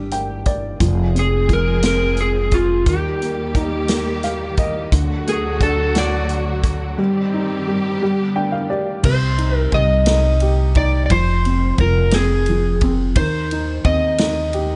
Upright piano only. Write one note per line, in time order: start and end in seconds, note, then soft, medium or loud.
0.00 0.83 G3 medium
0.00 0.83 D4 soft
0.12 0.44 G5 medium
0.46 0.78 D5 medium
0.80 1.47 F3 medium
1.15 1.82 C4 soft
1.48 2.82 F3 soft
1.84 2.84 C4 soft
2.86 4.88 D#3 medium
3.21 3.88 A#3 soft
3.56 4.89 D#4 soft
3.90 4.90 A#3 soft
4.24 4.56 F5 medium
4.58 4.90 D#5 medium
4.93 6.95 D3 medium
5.28 6.61 A3 soft
5.61 6.95 D4 medium
5.96 6.96 F#4 medium
6.98 7.66 G3 medium
7.34 8.00 D#4 soft
7.67 8.01 G3 soft
8.02 9.02 G3 medium
8.35 9.02 D4 medium
8.35 8.52 G5 medium
8.52 8.68 F5 medium
8.70 9.04 G4 medium
8.70 9.02 D5 medium
9.04 11.06 C3 medium
9.38 10.05 D#4 soft
9.73 11.07 G3 soft
10.07 10.74 D#4 medium
10.42 11.08 G4 medium
10.76 11.09 D#4 medium
11.11 11.78 F3 medium
11.46 12.13 C4 medium
11.80 12.48 F3 soft
12.14 12.82 C4 medium
12.49 13.15 F3 medium
12.83 13.16 C4 medium
13.17 14.76 D#3 medium
13.52 14.19 D#4 medium
13.86 14.76 C4 medium
14.20 14.76 D#4 medium
14.54 14.76 G4 medium